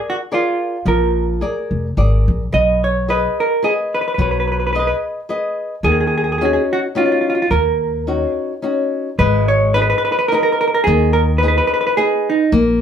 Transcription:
Already playing: G#4 A#4 D5
0.10 F#4
0.32 F4 G#4 A#4 D5
0.85 A#1 F3 A#4
1.41 G#4 A#4 D5
1.71 F1
1.97 G#1 G#4 A#4 D5
2.28 A#1
2.52 B1 B3 D#5
2.84 C#5
3.08 G#4 B4 D#5
3.40 A#4
3.62 G#4 B4 D#5
3.94 B4
4.01 B4
4.08 B4
4.14 B1 B4
4.19 F#3 B4
4.31 B4
4.40 B4
4.47 B4
4.52 B4
4.60 B4
4.67 B4
4.73 G#4 B4 D#5
4.79 B4
4.87 B4
5.29 G#4 B4 D#5
5.83 D#2 D#3 G#4
5.92 G#4
6.00 G#4
6.07 G#4
6.18 G#4
6.24 G#4
6.32 G#4
6.38 C#4 D#4 F#4 G#4
6.45 G#4
6.53 G#4
6.73 F#4
6.95 C#4 D#4 F4 F#4
7.06 F4
7.12 F4
7.21 F4
7.30 F4
7.35 F4
7.42 F4
7.50 D#2 A#3 A#4
8.07 C#4 D#4 F#4
8.62 C#4 D#4 F#4
9.19 G#1 G#3 B4
9.48 C#5
9.74 D#4 G#4 B4
9.82 B4
9.90 B4
9.98 B4
10.05 B4
10.12 B4
10.19 B4
10.28 D#4 G#4 A#4
10.33 A#4 B4
10.43 A#4
10.52 A#4
10.61 A#4
10.68 A#4
10.74 A#4
10.84 D#2 D#3 G#4
11.13 A#4
11.38 B4
11.43 D#4 G#4 B4
11.48 B4
11.58 B4
11.67 B4
11.74 B4
11.81 B4
11.87 B4
11.97 D#4 G#4 B4
12.30 D#4
12.52 A#1 A#3

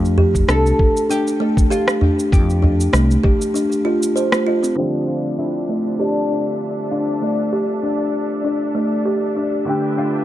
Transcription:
Already playing: F2 A3
0.05 shaker
0.18 G4, udu
0.35 kick, shaker
0.48 C2 D4 A4, cross-stick, shaker
0.66 shaker
0.79 kick
0.97 shaker
1.10 D4 G4, shaker
1.27 shaker
1.40 A3
1.57 kick, shaker
1.70 F4 G4, shaker
1.88 cross-stick, shaker
2.01 D4, udu
2.19 shaker
2.32 F2 G4, kick, udu, shaker
2.50 shaker
2.62 D4, udu
2.81 shaker
2.93 C2 A3, cross-stick, shaker
3.11 shaker
3.24 G4, kick
3.42 shaker
3.54 D4, shaker
3.72 shaker
3.85 F4
4.03 shaker
4.16 C5, shaker
4.32 A3, cross-stick, shaker
4.46 F4
4.63 C4, shaker
4.75 D3 G3 C4 D4 A4 D5 E5
4.79 F3
5.08 F4
5.38 D4 E4
5.69 A3
5.99 D4 G4
6.30 D4
6.91 D4 F4
7.22 A3
7.53 G4
7.83 D4
8.44 D4
8.75 A3
9.05 G4
9.36 D4
9.65 D3 A3 D4 B4 E5 G5
9.69 G4
9.97 D4 F4

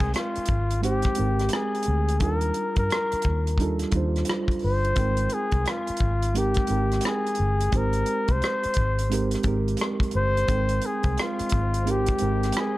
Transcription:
Already playing: G#3 C4 D#4 G#4 A#4 G5
0.00 C2, kick
0.14 F4, cross-stick, closed hi-hat
0.35 muted fingered electric bass stroke, closed hi-hat
0.45 kick, closed hi-hat
0.49 G#1
0.70 closed hi-hat
0.81 G#3 C4 D#4 G4 C5, closed hi-hat
1.02 kick, cross-stick, closed hi-hat
1.15 G#3 C4 D#4 G5, closed hi-hat
1.19 G#1 A#4
1.39 cross-stick, closed hi-hat
1.49 closed hi-hat
1.53 G#4, cross-stick
1.75 closed hi-hat
1.82 closed hi-hat
1.88 D2
2.08 closed hi-hat
2.20 D#2 G3 D4 D#4 F4 A4 A#4, kick, closed hi-hat
2.39 A#4, closed hi-hat
2.54 closed hi-hat
2.76 G2 A#4, kick, closed hi-hat
2.90 cross-stick, closed hi-hat
3.12 muted fingered electric bass stroke, closed hi-hat
3.22 kick, closed hi-hat
3.26 D#2
3.47 closed hi-hat
3.58 G3 D4 D#4 F4, kick, closed hi-hat
3.62 A4
3.79 cross-stick, closed hi-hat
3.91 D#2 G3 D4 D#4, kick, closed hi-hat
3.96 F4 C5
4.16 cross-stick, closed hi-hat
4.25 closed hi-hat
4.29 cross-stick
4.48 kick, closed hi-hat
4.59 open hi-hat
4.64 G1 C5
4.84 closed hi-hat
4.96 G#1 G#3 C4 D#4 A#4 G5, kick, closed hi-hat
5.17 closed hi-hat
5.29 closed hi-hat
5.33 G#4
5.51 C2, kick, closed hi-hat
5.65 F4, cross-stick, closed hi-hat
5.87 muted fingered electric bass stroke, closed hi-hat
5.97 kick, closed hi-hat
6.02 G#1
6.22 closed hi-hat
6.34 G#3 C4 D#4 G4 A#4, closed hi-hat
6.38 G4
6.54 kick, cross-stick, closed hi-hat
6.67 G#1 G#3 C4 D#4, closed hi-hat
6.71 A#4 G5
6.92 cross-stick, closed hi-hat
7.01 closed hi-hat
7.05 G#4, cross-stick
7.26 closed hi-hat
7.35 closed hi-hat
7.40 G1
7.60 closed hi-hat
7.72 G#1 G#3 C4 D#4 G4 C5, kick, closed hi-hat
7.77 A#4
7.93 closed hi-hat
8.06 closed hi-hat
8.28 C2, kick, closed hi-hat
8.32 C5
8.42 cross-stick, closed hi-hat
8.63 muted fingered electric bass stroke, closed hi-hat
8.74 kick, closed hi-hat
8.78 G#1
8.98 closed hi-hat
9.10 G#3 C4 D#4 G4 A#4, closed hi-hat
9.31 cross-stick, closed hi-hat
9.43 G#1 G#3 C4 D#4 G4, kick, closed hi-hat
9.48 A#4
9.68 closed hi-hat
9.77 closed hi-hat
9.81 cross-stick
10.00 kick, closed hi-hat
10.11 G1, closed hi-hat
10.17 C5
10.37 closed hi-hat
10.48 G#1 G#3 C4 D#4 A4 G5, kick, closed hi-hat
10.58 A#4
10.69 closed hi-hat
10.81 closed hi-hat
10.86 G#4
11.03 C2, kick, closed hi-hat
11.17 cross-stick, closed hi-hat
11.22 F4
11.39 muted fingered electric bass stroke, closed hi-hat
11.49 kick, closed hi-hat
11.54 G#1
11.74 closed hi-hat
11.85 G#3 C4 D#4 G4 A#4, closed hi-hat
11.91 G4
12.06 kick, closed hi-hat
12.18 G#1 G#3 C4 D#4 G5, closed hi-hat
12.23 A#4
12.43 cross-stick, closed hi-hat
12.52 closed hi-hat
12.57 G#4, cross-stick

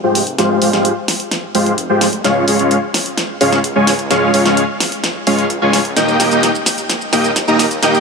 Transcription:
0.03 F1 G#3 F4 G4 C5 G5
0.15 open hi-hat
0.27 closed hi-hat
0.38 F1 G#3 F4 G4 C5 F5, snare, closed hi-hat
0.62 F1 G#3 F4 G4 C5 F5, open hi-hat
0.73 F1 G#3 F4 G4 C5 F5, snare, closed hi-hat
0.85 closed hi-hat
1.08 snare, open hi-hat
1.20 closed hi-hat
1.31 snare, closed hi-hat
1.55 F1 G#3 F4 G4 C5 F5, open hi-hat
1.66 closed hi-hat
1.78 closed hi-hat
1.89 F1 G#3 F4 G4 C5 G5
2.01 snare, open hi-hat
2.13 closed hi-hat
2.24 C#2 G#3 C#4 F4 C#5 F5, snare, closed hi-hat
2.48 C#2 G#3 C#4 F4 C#5 F5, open hi-hat
2.59 C#2 G#3 C#4 F4 C#5 F5, closed hi-hat
2.71 closed hi-hat
2.94 snare, open hi-hat
3.06 closed hi-hat
3.18 snare, closed hi-hat
3.41 C#2 G#3 C#4 F4 C#5 F5, open hi-hat
3.52 snare, closed hi-hat
3.64 closed hi-hat
3.75 C#2 G#3 C#4 F4 C#5 G#5
3.87 snare, open hi-hat
3.99 closed hi-hat
4.10 C#2 G#3 C#4 F4 C#5 F5, snare, closed hi-hat
4.34 C#2 G#3 C#4 F4 C#5 F5, open hi-hat
4.45 C#2 G#3 C#4 F4 C#5 F5, snare, closed hi-hat
4.57 closed hi-hat
4.80 snare, open hi-hat
4.92 closed hi-hat
5.04 snare, closed hi-hat
5.27 C#2 G#3 C#4 F4 C#5 F5, open hi-hat
5.39 closed hi-hat
5.50 closed hi-hat
5.62 C#2 G#3 C#4 F4 C#5 G#5
5.73 snare, open hi-hat
5.85 closed hi-hat
5.96 D#2 A#3 D#4 G4 D#5 G5, snare, closed hi-hat, shaker
6.08 shaker
6.20 D#2 A#3 D#4 G4 D#5 G5, snare, open hi-hat, shaker
6.31 D#2 A#3 D#4 G4 D#5 G5, closed hi-hat, shaker
6.43 snare, closed hi-hat, shaker
6.55 shaker
6.66 snare, open hi-hat, shaker
6.78 closed hi-hat, shaker
6.90 snare, closed hi-hat, shaker
7.01 shaker
7.13 D#2 A#3 D#4 G4 D#5 G5, snare, open hi-hat, shaker
7.24 closed hi-hat, shaker
7.36 snare, closed hi-hat, shaker
7.48 D#2 A#3 D#4 G4 D#5 A#5, shaker
7.59 snare, open hi-hat, shaker
7.71 closed hi-hat, shaker
7.83 D#2 A#3 D#4 G4 D#5 G5, snare, closed hi-hat, shaker
7.95 shaker

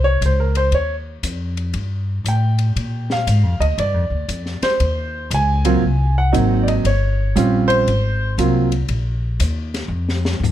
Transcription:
Already playing: C2
0.04 C#5
0.21 C#2, kick, hi-hat pedal, ride
0.26 C5
0.40 A#4
0.55 C5, ride
0.72 D#2 C#5, kick, ride
1.23 F2, kick, hi-hat pedal, ride
1.57 ride
1.74 G2, kick, ride
2.24 A2, kick, hi-hat pedal, ride
2.28 G5
2.58 ride
2.76 A#2, kick, ride
3.10 F5, snare
3.27 G#2, kick, hi-hat pedal, ride
3.43 F2
3.60 D2 D#5, ride
3.78 G2 D5, kick, ride
3.94 F2
4.10 D2
4.28 F2, kick, hi-hat pedal, ride
4.46 snare
4.62 C5, muted upright bass stroke, snare, ride
4.80 D#2, kick, ride
5.30 C#2 G#5, kick, hi-hat pedal, ride
5.65 F#3 A#3 C4 F4, ride
5.82 C2, kick
6.18 F#5
6.32 G#1 F#3 A#3 C4 D#4, kick, hi-hat pedal, ride
6.63 D5
6.68 D#5, ride
6.84 G1 C#5, kick, ride
7.35 A#1 G3 C4 C#4 F4, kick, hi-hat pedal, ride
7.68 C5, ride
7.86 G#1, kick, ride
8.38 C2 F#3 A#3 C4 F4, kick, hi-hat pedal, ride
8.72 ride
8.88 A#1, kick, ride
9.40 D#2, kick, hi-hat pedal, ride
9.74 snare, ride
9.88 F2
10.09 snare
10.25 snare
10.40 D2, floor tom, hi-hat pedal

